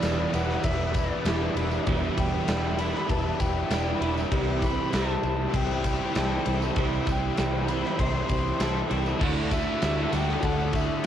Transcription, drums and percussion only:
0.02 snare, ride, tambourine
0.20 tambourine
0.34 ride, tambourine
0.50 snare
0.64 kick, ride
0.81 tambourine
0.94 kick, ride, tambourine
1.11 tambourine
1.25 snare, ride, tambourine
1.41 tambourine
1.57 ride, tambourine
1.71 tambourine
1.87 kick, ride
2.02 tambourine
2.18 kick, ride, tambourine
2.48 snare, ride, tambourine
2.64 tambourine
2.78 ride, tambourine
2.95 snare
3.09 kick, ride
3.25 tambourine
3.40 kick, ride, tambourine
3.56 tambourine
3.71 snare, ride, tambourine
3.87 tambourine
4.02 ride, tambourine
4.18 tambourine
4.32 kick, ride
4.48 tambourine
4.62 kick, ride, tambourine
4.93 snare, ride, tambourine
5.10 tambourine
5.23 ride, tambourine
5.54 kick, ride
5.71 tambourine
5.84 kick, ride, tambourine
6.01 tambourine
6.15 snare, ride, tambourine
6.31 tambourine
6.46 ride, tambourine
6.62 tambourine
6.76 kick, ride, tambourine
6.93 tambourine
7.07 kick, ride, tambourine
7.37 snare, ride, tambourine
7.54 tambourine
7.68 ride, tambourine
7.84 snare, tambourine
7.99 kick, ride, tambourine
8.15 tambourine
8.29 kick, ride, tambourine
8.46 tambourine
8.60 snare, ride, tambourine
8.76 tambourine
8.91 ride
9.06 tambourine
9.21 kick, crash
9.37 tambourine
9.51 kick, ride, tambourine
9.82 snare, ride, tambourine
9.98 tambourine
10.13 ride, tambourine
10.29 snare
10.43 kick, ride
10.60 tambourine
10.73 kick, ride, tambourine
10.92 tambourine

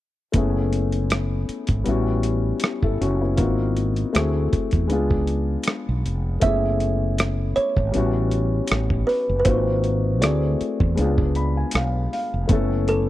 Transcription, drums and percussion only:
0.34 kick, closed hi-hat
0.73 closed hi-hat
0.92 closed hi-hat
1.10 cross-stick, closed hi-hat
1.49 closed hi-hat
1.67 kick, closed hi-hat
1.86 closed hi-hat
2.23 closed hi-hat
2.60 closed hi-hat
2.64 cross-stick
2.83 kick
3.02 closed hi-hat
3.38 kick, closed hi-hat
3.77 closed hi-hat
3.96 closed hi-hat
4.15 cross-stick, closed hi-hat
4.53 kick, closed hi-hat
4.71 kick, closed hi-hat
4.90 closed hi-hat
5.11 kick
5.27 closed hi-hat
5.63 closed hi-hat
5.68 cross-stick
6.06 closed hi-hat
6.41 kick, closed hi-hat
6.80 closed hi-hat
7.18 cross-stick, closed hi-hat
7.57 closed hi-hat
7.77 kick
7.94 closed hi-hat
8.31 closed hi-hat
8.67 closed hi-hat
8.72 cross-stick
8.90 kick
9.09 open hi-hat
9.45 kick, closed hi-hat
9.84 closed hi-hat
10.22 cross-stick, closed hi-hat
10.61 closed hi-hat
10.80 kick
10.98 closed hi-hat
11.18 kick
11.35 closed hi-hat
11.71 closed hi-hat
11.75 cross-stick
12.13 open hi-hat
12.49 kick, closed hi-hat
12.88 closed hi-hat

